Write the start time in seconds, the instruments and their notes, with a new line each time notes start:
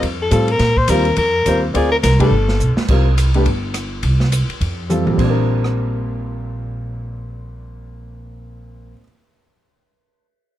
0.02 upright bass F2, kick, ride
0.22 soprano saxophone A4
0.31 upright bass A2, grand piano G3 C4 F4 A4, soprano saxophone A4, kick, hi-hat pedal, ride
0.48 soprano saxophone A#4, ride
0.59 upright bass A#2, kick, snare, ride
0.77 soprano saxophone C5, kick
0.88 upright bass D#2, grand piano G3 C4 F4 A#4, soprano saxophone A#4, kick, hi-hat pedal, ride
1.05 ride
1.16 upright bass F2, soprano saxophone A#4, kick, ride
1.46 upright bass D#2, grand piano G3 C4 F4 C5, kick, hi-hat pedal, ride
1.74 upright bass D2, grand piano C4 F4 A#4 D5, soprano saxophone G#4, kick, ride
1.92 soprano saxophone A#4
2.03 upright bass C2, soprano saxophone A#4, kick, snare, hi-hat pedal, ride
2.19 grand piano A3 D4 G4 B4, soprano saxophone A4, kick, ride
2.31 upright bass G1
2.49 snare
2.60 upright bass B1, hi-hat pedal
2.77 muted upright bass stroke, snare
2.88 upright bass C2, grand piano G3 C4 F4 A#4, kick, crash
3.18 hi-hat pedal, ride
3.34 grand piano A3 D4 G4 B4, ride
3.45 upright bass G1, kick, ride
3.74 cross-stick, hi-hat pedal, ride
4.03 upright bass C2, kick, ride
4.20 snare
4.32 hi-hat pedal, ride
4.48 muted upright bass stroke, ride
4.61 upright bass F2, kick, ride
4.89 grand piano G3 C4 F4 A4, hi-hat pedal, mid tom
5.06 upright bass A1, grand piano A#2, mid tom
5.11 grand piano G3
5.18 upright bass A#1, grand piano C4, kick, crash
5.24 grand piano D4
5.30 grand piano A#4
5.64 cross-stick